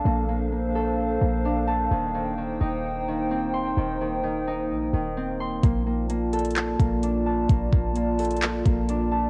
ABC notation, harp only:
X:1
M:4/4
L:1/8
Q:1/4=129
K:Bb
V:1 name="Harp"
[B,DAa] B, B, A2 B, D a | E, E, E, E2 E, C c' | E, E, E, E2 E, C c' | B, B, B, A2 B, D a |
B, B, B, A2 B, D a |]